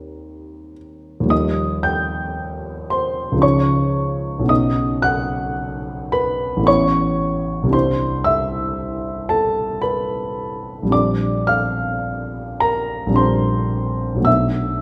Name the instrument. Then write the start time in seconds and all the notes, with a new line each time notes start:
grand piano
Already playing: D#2 D#3 G3 C4 D#4 A#4 A#5
1.20 D#2 F3
1.25 G3 A#3
1.29 D#4 D#5 D#6
1.83 G5 G6
2.90 C5 C6
3.32 C#2 F3
3.37 G#3 C#4
3.41 D#4 C#5 C#6
4.39 B1 F#3
4.44 B3 C#4
4.48 D#4 D#5 D#6
5.02 F#5 F#6
6.12 B4 B5
6.57 A1 A3
6.61 B3 C#4
6.65 E4 C#5 C#6
7.63 C2 G3
7.67 C4 D4
7.72 E4 C5 C6
8.24 E5 E6
9.29 A4 A5
9.82 B4 B5
10.83 A#1 G3
10.87 C4 D4
10.92 D5 D6
11.47 F5 F6
12.60 A#4 A#5
13.06 A#1 G3
13.11 C4 D4
13.16 C5 C6
14.15 B1 F#3
14.19 A3 B3
14.24 D4 E5 E6